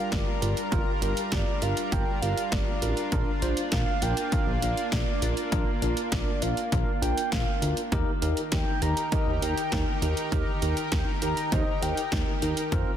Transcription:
Already playing: G3 D4 F4 A#4 F5
0.11 G1 F4 G4 A#4 D5, kick, snare, closed hi-hat
0.42 G1 F4 G4 A#4, closed hi-hat
0.57 closed hi-hat
0.72 G1 F4 G4 A#4, kick, closed hi-hat
1.02 G1 F4 G4 A#4, closed hi-hat
1.17 closed hi-hat
1.32 G1 F4 G4 A#4 D5, kick, snare, closed hi-hat
1.62 G1 F4 G4 A#4 F5, closed hi-hat
1.77 closed hi-hat
1.92 G1 F4 G4 A#4 G5, kick, closed hi-hat
2.22 G1 F4 G4 A#4 F5, closed hi-hat
2.37 closed hi-hat
2.52 G1 F4 G4 A#4 D5, kick, snare, closed hi-hat
2.82 A1 F4 G4 A#4, closed hi-hat
2.97 closed hi-hat
3.12 A#1 A#3 D4 F4 A#4, kick, closed hi-hat
3.42 A#1 D4 F4 C5, closed hi-hat
3.57 closed hi-hat
3.72 A#1 D4 F4 A#4 F5, kick, snare, closed hi-hat
4.02 A#1 D4 F4 A#4 G5, closed hi-hat
4.17 closed hi-hat
4.32 D4 F4 A#4 F5, kick, closed hi-hat
4.47 A#1
4.62 A#1 D4 F4 A#4, closed hi-hat
4.77 closed hi-hat
4.92 A#1 D4 F4 A#4 D5, kick, snare, closed hi-hat
5.22 A#1 D4 F4 A#4, closed hi-hat
5.37 closed hi-hat
5.52 A#1 D4 F4 A#4, kick, closed hi-hat
5.82 A#1 D4 F4 A#4, closed hi-hat
5.97 closed hi-hat
6.12 A#1 D4 F4 A#4 D5, kick, snare, closed hi-hat
6.42 A#1 D4 F4 A#4 F5, closed hi-hat
6.57 closed hi-hat
6.72 A#1 D4 F4 A#4, kick, closed hi-hat
7.02 A#1 D4 F4 A#4 G5, closed hi-hat
7.18 closed hi-hat
7.32 A#1 D4 F4 A#4 F5, kick, snare, closed hi-hat
7.62 D2 D4 F4 A#4, closed hi-hat
7.77 closed hi-hat
7.92 D#2 D#3 D#4 G4 A#4, kick, closed hi-hat
8.22 D#2 D#4 G4 A#4, closed hi-hat
8.37 closed hi-hat
8.52 D#2 D#4 G4 A#4 G5, kick, snare, closed hi-hat
8.82 D#2 D#4 G4 A#4 A#5, closed hi-hat
8.97 closed hi-hat
9.12 D#4 G4 A#4 D#5, kick, closed hi-hat
9.27 D#2
9.42 D#2 D#4 G4 A#4 G5, closed hi-hat
9.57 closed hi-hat
9.72 D#2 D#4 G4 A#4, kick, snare, closed hi-hat
10.02 D#2 D#4 G4 A#4, closed hi-hat
10.17 closed hi-hat
10.32 D#2 D#4 G4 A#4, kick, closed hi-hat
10.62 D#2 D#4 G4 A#4, closed hi-hat
10.77 closed hi-hat
10.92 D#2 D#4 G4 A#4 G5, kick, snare, closed hi-hat
11.22 D#2 D#4 G4 A#4 A#5, closed hi-hat
11.37 closed hi-hat
11.52 D#2 D#4 G4 C5 D#5, kick, closed hi-hat
11.82 D#2 D#4 G4 A#4 G5, closed hi-hat
11.97 closed hi-hat
12.12 D#2 D#4 G4 A#4, kick, snare, closed hi-hat
12.42 D#2 D#4 G4 A#4, closed hi-hat
12.57 closed hi-hat
12.72 F2 A#3 C4 F4 A#4, kick, closed hi-hat

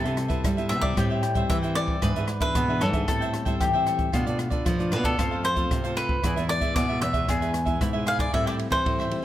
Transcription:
Already playing: C3 G3 B3 E4 A4
0.04 C3 B4 C5 E5, closed hi-hat
0.16 muted cavaquinho stroke, cross-stick, closed hi-hat
0.28 G3 B3 E4 B4 C5 E5, kick, closed hi-hat
0.43 G2 G3 E4 B4 C5 E5, kick, cross-stick, closed hi-hat
0.57 G3 B3 E4 B4 C5 E5, closed hi-hat
0.69 C3 E5, cross-stick, closed hi-hat
0.81 B4 C5 D5 E5, kick, closed hi-hat
0.95 A2 G3 C4 E4 G4 A4 C5 E5 G5, kick, cross-stick, closed hi-hat
1.10 C5 E5 G5
1.22 muted cavaquinho stroke, cross-stick, closed hi-hat
1.34 G3 C4 E4 C5 E5 G5, kick, closed hi-hat
1.50 E3 E5, kick, cross-stick, closed hi-hat
1.63 G3 C4 E4 C5 E5 G5, closed hi-hat
1.75 A4 C5 D5 E5 G5, cross-stick, closed hi-hat
1.88 kick
2.02 G#2 E3 B3 D4 G#4 B4 E5, kick, cross-stick, closed hi-hat
2.16 G#2 G#4 B4 E5, closed hi-hat
2.27 muted cavaquinho stroke, cross-stick, closed hi-hat
2.40 E3 B3 D4 G#4 B4 E5, kick, closed hi-hat
2.55 G#2 B2 D4 G#4 B4 E5, kick, cross-stick, closed hi-hat
2.68 E3 B3 D4 G#4 B4 E5
2.81 G#2 A4, cross-stick, closed hi-hat
2.93 G#4 B4 E5, kick, closed hi-hat
3.07 A2 G3 C4 E4 A4 C5 E5 G5, kick, cross-stick, closed hi-hat
3.21 C5 E5 G5, closed hi-hat
3.33 muted cavaquinho stroke, cross-stick, closed hi-hat
3.45 G3 C4 E4 C5 E5 G5, kick, closed hi-hat
3.60 A2 E3 G4, kick, cross-stick, closed hi-hat
3.73 G3 C4 E4 C5 E5 G5
3.86 A4 C5 E5 G5, cross-stick, closed hi-hat
3.99 kick, closed hi-hat
4.12 B2 A3 D4 F4 A4 B4 D5, kick, cross-stick, closed hi-hat
4.27 B2 A4 B4 D5, closed hi-hat
4.38 muted cavaquinho stroke, cross-stick, closed hi-hat
4.50 A3 D4 F4 A4 B4 D5, kick, closed hi-hat
4.65 B2 F3 F4 A4 B4 D5, kick, cross-stick, closed hi-hat
4.79 A3 D4 F4 A4 B4 D5, closed hi-hat
4.92 B2 B4, cross-stick, closed hi-hat
5.03 A4 B4 D5, kick, closed hi-hat
5.17 F2 F3 A3 C4 F4 A4 C5 F5, kick, cross-stick, closed hi-hat
5.31 A4 C5 F5
5.43 C5, muted cavaquinho stroke, cross-stick, closed hi-hat
5.56 A3 C4 F4 A4 C5 F5, kick, closed hi-hat
5.71 C3, kick, cross-stick, closed hi-hat
5.84 A3 C4 F4 A4 C5 F5, closed hi-hat
5.95 F4 A4 B4 C5 F5, cross-stick, closed hi-hat
6.09 kick
6.23 E2 E3 G#3 B3 E4 G#4 B4 E5, kick, cross-stick, closed hi-hat
6.36 E2 G#4 B4 E5, closed hi-hat
6.49 D5, muted cavaquinho stroke, cross-stick, closed hi-hat
6.61 G#3 B3 E4 G#4 B4 E5, kick, closed hi-hat
6.75 B2 E4 G#4 B4 D5 E5, kick, cross-stick, closed hi-hat
6.89 G#3 B3 E4 G#4 B4 E5
7.01 E2 E5, cross-stick, closed hi-hat
7.13 G#4 B4 E5, kick, closed hi-hat
7.28 E2 E3 G#3 B3 E4 G#4 B4 E5, kick, cross-stick, closed hi-hat
7.41 G#4 B4 E5, closed hi-hat
7.53 muted cavaquinho stroke, cross-stick, closed hi-hat
7.65 G#3 B3 E4 G#4 B4 E5, kick, closed hi-hat
7.81 G#2 B2 E4, kick, cross-stick, closed hi-hat
7.93 G#3 B3 E4 G#4 B4 E5
8.06 E4 G#4 B4 E5 F5, cross-stick, closed hi-hat
8.19 D5, kick, closed hi-hat
8.33 A2 G3 C4 E4 A4 C5 E5 G5, kick, ride
8.46 C5 D5 E5 G5, cross-stick
8.59 muted cavaquinho stroke, ride
8.70 E3 G3 C4 E4 C5 E5 G5, kick, cross-stick, ride
8.85 A2 E3 A4 C5 E5 G5, kick, ride
8.99 C5 E5 G5, cross-stick
9.11 G3 C4 E4, ride

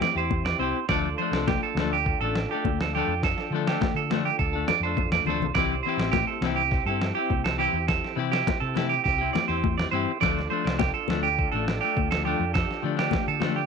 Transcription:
Already playing: C4 E4 G4
0.01 D5, snare, high conga, low conga
0.15 E2 E4 G4 C5
0.31 kick, high conga
0.45 D5, snare
0.59 C2 C4 E4 G4 C5, muted conga
0.89 D2 F3 A3 D4 F4 A4 D5, kick, snare, muted conga
1.18 F3 A3 D4 C5, muted conga
1.31 C2 D4 A4, snare
1.36 A3
1.47 G4, kick, snare, high conga
1.63 A4
1.75 D2 F3, snare, high conga
1.79 A3 D4 A4
1.93 G4
2.06 kick, muted conga
2.21 A1 D4 A4
2.25 A3
2.35 snare
2.51 A3 D4 G4 A4
2.65 D2, kick, high conga
2.81 A4, snare
2.94 F3 A3 D4 G4, muted conga
2.99 A4
3.07 F2
3.23 A4, kick, snare, muted conga
3.38 snare
3.50 D3 F3 A3, muted conga
3.55 D4 A4
3.67 A3 D4 G4 A4, snare
3.81 kick, snare, high conga
3.95 D3 A4
4.10 F3 A3 D4, muted clean electric guitar stroke, snare, high conga
4.25 G4
4.39 D2 A4, kick, muted conga
4.53 A3 D4 A4
4.68 D5, snare, high conga, low conga
4.80 F2 A4 C5
4.86 A3 D4
4.97 kick, high conga
5.10 E2 D5, snare, high conga
5.24 D2 F3 C5, low conga
5.28 A3 D4 A4
5.38 C2, low conga
5.54 C2 E3 C4 E4 G4 D5, kick, snare, muted conga
5.83 E3 C4 C5, muted conga
5.88 E4 G4
5.97 A1 E4 G4, snare
6.02 C4
6.12 G4, kick, snare, high conga
6.27 A4
6.41 C2 E3 C4 E4, snare, high conga
6.46 G4
6.56 G4
6.71 kick, snare, muted conga
6.86 G2 E4 G4 A4
6.91 C4
7.01 snare
7.15 C4 E4 G4
7.30 C2, kick, high conga
7.44 A4, snare
7.58 E3 C4 E4 G4, muted conga
7.73 E2
7.88 A4, kick, snare, muted conga
8.05 snare
8.16 C3 E3 C4 E4 G4, muted conga
8.32 E4 G4, muted clean electric guitar stroke, snare
8.47 kick, snare, high conga
8.60 C3 A4
8.75 E3 E4 G4, muted clean electric guitar stroke, snare, high conga
8.89 G4
9.04 C2 G4, kick, snare, muted conga
9.18 C4 E4 G4
9.33 D5, snare, high conga, low conga
9.48 E2 E4 G4 C5
9.53 C4
9.64 kick, high conga
9.78 D5, snare
9.91 G2 E3 C4 E4 G4 C5, muted conga
10.21 D2 F3 A3 D4 F4 A4 D5, kick, snare
10.39 snare
10.50 F3 A3 D4 C5, muted conga
10.64 C2 A3 D4, snare
10.79 G4, kick, snare, high conga
10.94 A4
11.08 D2 F3 A3 D4, snare, high conga
11.23 G4
11.39 kick, muted conga
11.52 A1 A3 D4 A4
11.68 snare
11.81 A3 D4 G4
11.96 D2, kick, high conga
12.11 A4, snare
12.24 F3 A3 D4 G4, muted conga
12.40 F2
12.54 G4 A4, kick, snare, muted conga
12.71 snare
12.82 D3 F3 A3 D4, muted conga
12.97 A3 D4 G4, snare
13.11 kick, snare, high conga, low conga
13.28 D3 A4
13.40 F3 A3 D4, snare, high conga
13.56 G4

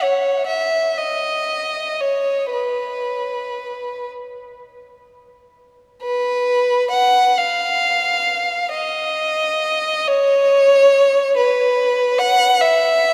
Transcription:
0.03 C#5
0.47 E5
0.98 D#5
2.00 C#5
2.53 B4
6.03 B4
6.91 F#5
7.38 F5
8.73 D#5
10.08 C#5
11.37 B4
12.19 F#5
12.61 E5

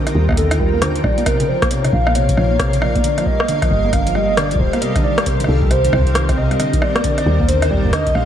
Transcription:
Already playing: D#4 F4 A#4 G5
0.07 D#3, cross-stick, closed hi-hat
0.15 D#2 G3
0.29 A#3, kick, cross-stick
0.31 F5, cross-stick
0.32 cross-stick
0.34 cross-stick
0.36 D3 A4, cross-stick, closed hi-hat
0.51 D#3, cross-stick, closed hi-hat
0.59 G3 A#4, kick
0.73 A#3
0.82 D3 C5, cross-stick, closed hi-hat
0.96 D#3, closed hi-hat
1.04 A#1 G3 D5, kick, cross-stick
1.18 A#3, closed hi-hat
1.26 C3 A#3 A#4, kick, cross-stick, closed hi-hat
1.40 C#3, closed hi-hat
1.48 F3 C5
1.62 A#3 C#5, kick, cross-stick, closed hi-hat
1.71 C3 C#5, closed hi-hat
1.84 C#3, cross-stick, closed hi-hat
1.93 A#1 F3 F5, kick
2.07 A#3, cross-stick
2.15 C3 C#5, closed hi-hat
2.29 C#3, kick, closed hi-hat
2.37 A#1 F3, cross-stick
2.51 A#3
2.60 C3, kick, cross-stick, closed hi-hat
2.73 C#3, closed hi-hat
2.82 F3 D5, cross-stick
2.96 A#3, kick, closed hi-hat
3.04 D3 G3, closed hi-hat
3.18 F3, cross-stick, closed hi-hat
3.23 G3 G4 D#5, kick
3.40 A#3, cross-stick
3.48 D3 A4, closed hi-hat
3.62 F3, kick, cross-stick, closed hi-hat
3.71 G1 G3
3.84 A#3
3.93 D3 F5, kick, cross-stick, closed hi-hat
4.07 F3, closed hi-hat
4.15 G3 D#5, cross-stick
4.29 A#3
4.37 D3 D5, cross-stick, closed hi-hat
4.51 F3, closed hi-hat
4.55 C5, kick
4.60 D1 G3
4.73 A#3, cross-stick, closed hi-hat
4.82 C3 C4 D#5, closed hi-hat
4.95 D3, kick, cross-stick, closed hi-hat
5.04 D#3 D5
5.18 G3, cross-stick, closed hi-hat
5.26 C3 C5, kick, closed hi-hat
5.40 D3, closed hi-hat
5.44 cross-stick
5.48 C2 D#3 A4
5.62 G3 C5, kick
5.70 C3 C5, cross-stick, closed hi-hat
5.84 D3, closed hi-hat
5.93 C2 C4, kick, cross-stick
5.96 kick
5.98 kick
6.01 kick
6.04 D#3, kick, closed hi-hat
6.15 D#3, cross-stick, closed hi-hat
6.29 C4, kick, cross-stick, closed hi-hat
6.37 C3 D#5
6.51 G3, cross-stick, closed hi-hat
6.59 D3 D#4, cross-stick, closed hi-hat
6.73 D#3, kick, closed hi-hat
6.82 G3 D5, cross-stick
6.96 A#3, cross-stick, closed hi-hat
7.04 D3, kick, closed hi-hat
7.18 D#3, cross-stick, closed hi-hat
7.26 D#2 G3
7.40 A#3 F5 G5, kick
7.48 D3 C5, closed hi-hat
7.62 D#3, cross-stick, closed hi-hat
7.70 G3 D5, kick
7.74 kick
7.78 kick
7.81 kick
7.84 A#3, kick
7.87 kick
7.89 kick
7.91 D3 D#5, kick, cross-stick, closed hi-hat
8.07 D#3, kick, closed hi-hat
8.15 A#1 G3 F5, cross-stick

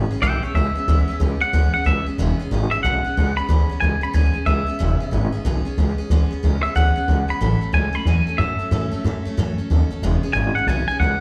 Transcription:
Already playing: G#3 B3 C#4
0.10 B3 C#4 G#4, muted upright bass stroke
0.22 B1 E3 G#3 B3 C#4 G#4 E5 G5
0.43 B3 C#4 G#4 C#5 E5, muted upright bass stroke
0.54 C#2 G#3 B3 C#4 G#4 E5
0.75 B3 C#4 G#4, muted upright bass stroke
0.88 D2 E3 G#3 B3 C#4 G#4
1.08 B3 C#4 G#4, muted upright bass stroke
1.20 C#2 G#3 B3 C#4 G#4
1.40 B3 C#4 G#4 F#5, muted upright bass stroke
1.53 D2 E3 G#3 B3 C#4 G#4
1.73 B3 C#4 G#4 F#5, muted upright bass stroke
1.84 C#2 G#3 B3 C#4 G#4 E5
2.06 B3 C#4 G#4, muted upright bass stroke
2.18 E1 E3 G#3 B3 C#4 G#4
2.40 B3 C#4 G#4, muted upright bass stroke
2.51 G#1 G#3 B3 C#4 G#4
2.71 B3 C#4 G#4 E5, muted upright bass stroke
2.83 B1 E3 G#3 B3 C#4 G#4 F#5
3.04 B3 C#4 G#4, muted upright bass stroke
3.17 C#2 G#3 B3 C#4 G#4
3.37 B3 C#4 G#4 B5, muted upright bass stroke
3.49 D2 E3 G#3 B3 C#4 G#4
3.69 B3 C#4 G#4, muted upright bass stroke
3.80 C#2 G#3 B3 C#4 G#4 G#5
4.01 B3 C#4 G#4 B5, muted upright bass stroke
4.13 D2 E3 G#3 B3 C#4 G#4 G#5
4.33 B3 C#4 G#4, muted upright bass stroke
4.46 C#2 G#3 B3 C#4 G#4 E5
4.67 B3 C#4 G#4, muted upright bass stroke
4.79 E1 E3 G#3 B3 C#4 G#4
5.00 B3 C#4 G#4, muted upright bass stroke
5.11 G#1 G#3 B3 C#4 G#4
5.32 B3 C#4 G#4, muted upright bass stroke
5.45 B1 E3 G#3 B3 C#4 G#4
5.65 B3 C#4 G#4, muted upright bass stroke
5.77 C#2 G#3 B3 C#4 G#4
5.98 B3 C#4 G#4, muted upright bass stroke
6.10 D2 E3 G#3 B3 C#4 G#4
6.31 B3 C#4 G#4, muted upright bass stroke
6.43 C#2 G#3 B3 C#4 G#4
6.63 B3 C#4 G#4 E5, muted upright bass stroke
6.75 D2 E3 G#3 B3 C#4 G#4 F#5
6.96 B3 C#4 G#4, muted upright bass stroke
7.08 C#2 G#3 B3 C#4 G#4
7.28 B3 C#4 G#4 B5, muted upright bass stroke
7.41 A1 A2 E3 F#3 A3 C#4 A4
7.60 F#3 A3 C#4 A4, muted upright bass stroke
7.72 C#2 F#3 A3 C#4 A4 G#5
7.93 F#3 A3 C#4 A4 B5, muted upright bass stroke
8.05 E2 A2 E3 F#3 A3 C#4 A4 G#5
8.26 F#3 A3 C#4 A4, muted upright bass stroke
8.38 F#2 F#3 A3 C#4 A4 E5
8.59 F#3 A3 C#4 A4, muted upright bass stroke
8.71 F#2 A2 E3 F#3 A3 C#4 A4
8.91 F#3 A3 C#4 A4, muted upright bass stroke
9.04 F#2 F#3 A3 C#4 A4
9.25 F#3 A3 C#4 A4, muted upright bass stroke
9.37 F#2 A2 E3 F#3 A3 C#4 A4
9.57 F#3 A3 C#4 A4, muted upright bass stroke
9.70 D#2 F#3 A3 C#4 A4
9.90 F#3 A3 C#4 A4, muted upright bass stroke
10.02 E1 E3 G#3 B3 C#4 G#4
10.23 B3 C#4 G#4, muted upright bass stroke
10.33 G#1 B3 C#4 G#5
10.38 G#4
10.55 B3 C#4 G#4 F#5, muted upright bass stroke
10.67 B1 E3 G#3 B3 C#4 G#4 G#5
10.87 B3 C#4 G#4 G#5, muted upright bass stroke
11.00 C#2 G#3 B3 C#4 F#5
11.04 G#4

